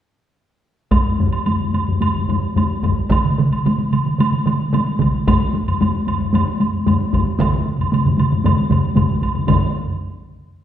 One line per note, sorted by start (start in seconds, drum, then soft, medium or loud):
0.91 taiko medium
0.91 taiko low-mid medium
0.91 taiko high medium
0.91 high woodblock soft
1.05 taiko low-mid medium
1.05 taiko high soft
1.18 taiko low-mid medium
1.18 taiko high soft
1.33 taiko high soft
1.33 high woodblock soft
1.46 taiko low-mid medium
1.46 taiko high medium
1.46 high woodblock soft
1.59 taiko low-mid medium
1.59 taiko high soft
1.73 taiko low-mid medium
1.73 taiko high soft
1.73 high woodblock soft
1.88 taiko low-mid medium
1.88 taiko high soft
2.01 taiko low-mid medium
2.01 taiko high medium
2.01 high woodblock soft
2.15 taiko low-mid medium
2.29 taiko low-mid medium
2.29 taiko high soft
2.29 high woodblock soft
2.43 taiko high soft
2.56 taiko low-mid medium
2.56 taiko high medium
2.56 high woodblock soft
2.70 taiko high soft
2.83 taiko medium
2.83 taiko low-mid medium
2.83 taiko high soft
2.83 high woodblock soft
2.98 taiko high soft
3.10 taiko medium
3.10 taiko mid medium
3.10 taiko high medium
3.10 high woodblock medium
3.25 taiko mid medium
3.25 taiko high soft
3.38 taiko mid medium
3.38 taiko high soft
3.52 taiko high soft
3.52 high woodblock soft
3.66 taiko mid medium
3.66 taiko high medium
3.66 high woodblock soft
3.78 taiko mid medium
3.78 taiko high soft
3.93 taiko mid medium
3.93 taiko high soft
3.93 high woodblock soft
4.06 taiko mid medium
4.06 taiko high soft
4.18 taiko mid medium
4.18 taiko high medium
4.18 high woodblock soft
4.32 taiko mid medium
4.46 taiko mid medium
4.46 taiko high medium
4.46 high woodblock soft
4.60 taiko high soft
4.73 taiko mid medium
4.73 taiko high medium
4.73 high woodblock soft
4.87 taiko high soft
4.99 taiko medium
4.99 taiko mid medium
4.99 taiko high medium
4.99 high woodblock soft
5.14 taiko high soft
5.27 taiko medium
5.27 taiko low-mid medium
5.27 taiko high medium
5.27 high woodblock medium
5.41 taiko high soft
5.54 taiko high medium
5.68 taiko low-mid medium
5.68 taiko high soft
5.68 high woodblock soft
5.81 taiko low-mid medium
5.81 taiko high medium
5.81 high woodblock soft
5.94 taiko high soft
6.08 taiko low-mid medium
6.08 taiko high medium
6.08 high woodblock soft
6.21 taiko low-mid medium
6.21 taiko high soft
6.34 taiko low-mid medium
6.34 taiko high medium
6.34 high woodblock soft
6.60 taiko high medium
6.60 high woodblock soft
6.74 taiko high soft
6.87 taiko low-mid medium
6.87 taiko high medium
6.87 high woodblock soft
6.99 taiko high soft
7.13 taiko medium
7.13 taiko low-mid medium
7.13 taiko high medium
7.13 high woodblock soft
7.26 taiko high soft
7.39 taiko medium
7.39 taiko low-mid medium
7.39 taiko mid medium
7.39 taiko high medium
7.39 high woodblock soft
7.52 taiko low-mid medium
7.52 taiko mid medium
7.52 taiko high soft
7.66 taiko high soft
7.79 taiko low-mid medium
7.79 taiko mid medium
7.79 taiko high soft
7.79 high woodblock soft
7.92 taiko low-mid medium
7.92 taiko mid medium
7.92 taiko high medium
7.92 high woodblock soft
8.05 taiko low-mid medium
8.05 taiko mid medium
8.05 taiko high soft
8.18 taiko low-mid medium
8.18 taiko mid medium
8.18 taiko high medium
8.18 high woodblock soft
8.32 taiko low-mid medium
8.32 taiko mid medium
8.32 taiko high soft
8.44 taiko low-mid medium
8.44 taiko mid loud
8.44 taiko high medium
8.44 high woodblock soft
8.57 taiko high soft
8.70 taiko low-mid medium
8.70 taiko mid medium
8.70 taiko high medium
8.70 high woodblock soft
8.84 taiko high soft
8.96 taiko medium
8.96 taiko low-mid medium
8.96 taiko mid medium
8.96 taiko high medium
8.96 high woodblock soft
9.09 taiko high soft
9.22 taiko medium
9.22 taiko high soft
9.22 high woodblock soft
9.34 taiko low-mid medium
9.34 taiko mid medium
9.34 taiko high soft
9.47 taiko medium
9.47 taiko low-mid medium
9.47 taiko mid medium
9.47 taiko high medium
9.47 high woodblock medium